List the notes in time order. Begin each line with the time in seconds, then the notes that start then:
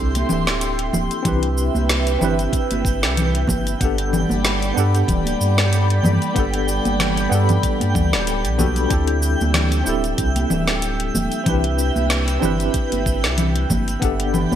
Already playing: C2 C4 D4 E4 G4 A4 E5 G5 C6
0.15 closed hi-hat, high conga, shaker
0.29 D1, low conga, shaker
0.47 snare, closed hi-hat, shaker
0.61 closed hi-hat, shaker
0.79 closed hi-hat
0.93 D1, high conga, low conga, shaker
1.11 closed hi-hat, shaker
1.23 C2 C4 D4 E4 G4 B4 E5, kick, closed hi-hat, low conga, shaker
1.28 B4
1.43 closed hi-hat
1.58 shaker
1.75 C2, high conga, shaker
1.89 snare, closed hi-hat, shaker
2.07 closed hi-hat, shaker
2.19 G1 C4 D4 E4, low conga, shaker
2.23 G4 B4
2.39 closed hi-hat, shaker
2.53 kick, closed hi-hat, shaker
2.71 G1, closed hi-hat, high conga, shaker
2.85 G1, kick, shaker
3.03 C2, snare, closed hi-hat, shaker
3.17 closed hi-hat, low conga, shaker
3.35 closed hi-hat
3.47 G1, kick, high conga, low conga, shaker
3.67 closed hi-hat, shaker
3.79 G1 G3 B3 D4 G4 D5 F#5 B5, kick, closed hi-hat, shaker
3.84 A4
3.98 closed hi-hat
4.13 low conga, shaker
4.30 G1, high conga, shaker
4.45 snare, closed hi-hat, shaker
4.62 closed hi-hat, shaker
4.74 G2 B3 D4 F#5, shaker
4.78 G4 A4
4.95 closed hi-hat, shaker
5.08 D1, kick, closed hi-hat, low conga, shaker
5.26 closed hi-hat, high conga, shaker
5.41 G2, shaker
5.58 snare, closed hi-hat, shaker
5.73 closed hi-hat, shaker
5.90 closed hi-hat
6.03 G2, high conga, low conga, shaker
6.22 closed hi-hat, shaker
6.34 G1 B3 D4 G4 F#5, kick, closed hi-hat, shaker
6.39 A4
6.54 closed hi-hat
6.68 shaker
6.85 G1, closed hi-hat, high conga, shaker
7.00 snare, closed hi-hat, low conga, shaker
7.17 closed hi-hat, shaker
7.29 G2 B3 D4 F#5, shaker
7.34 G4 A4
7.49 closed hi-hat, low conga, shaker
7.63 kick, closed hi-hat, shaker
7.80 G2, closed hi-hat, high conga, shaker
7.95 D2, kick, low conga, shaker
8.13 D1, snare, closed hi-hat, shaker
8.27 closed hi-hat, shaker
8.44 B1, closed hi-hat, shaker
8.58 B3 D4 F#4 G4 A4, kick, high conga, low conga, shaker
8.76 closed hi-hat, shaker
8.89 D2 C4 D4 E4 G4 E5, kick, closed hi-hat, shaker
8.94 A4
9.08 closed hi-hat
9.23 shaker
9.41 D2, high conga, shaker
9.54 snare, closed hi-hat, low conga, shaker
9.72 closed hi-hat, shaker
9.83 D1 C4 D4 E4, shaker
9.88 G4 A4
10.04 closed hi-hat, shaker
10.18 C2, kick, closed hi-hat, shaker
10.36 closed hi-hat, high conga, shaker
10.50 D1, low conga, shaker
10.68 snare, closed hi-hat, shaker
10.82 closed hi-hat, shaker
11.00 closed hi-hat
11.15 D1, high conga, low conga, shaker
11.32 closed hi-hat, shaker
11.44 C2 C4 D4 E4 B4, kick, closed hi-hat, low conga, shaker
11.48 G4 B4
11.64 closed hi-hat
11.79 shaker
11.96 C2, high conga, shaker
12.10 snare, closed hi-hat, shaker
12.28 closed hi-hat, shaker
12.40 C4 D4 E4, low conga, shaker
12.44 G1 G4 B4
12.60 closed hi-hat, shaker
12.74 kick, closed hi-hat, shaker
12.92 G1, closed hi-hat, high conga, shaker
13.06 G1, kick, shaker
13.24 C2, snare, closed hi-hat, shaker
13.38 closed hi-hat, low conga, shaker
13.56 closed hi-hat
13.70 G1, kick, high conga, low conga, shaker
13.88 closed hi-hat, shaker
14.00 G1 G3 B3 D4 D5 F#5 B5, kick, closed hi-hat, shaker
14.04 G4 A4
14.20 closed hi-hat
14.34 low conga, shaker
14.52 G1, high conga, shaker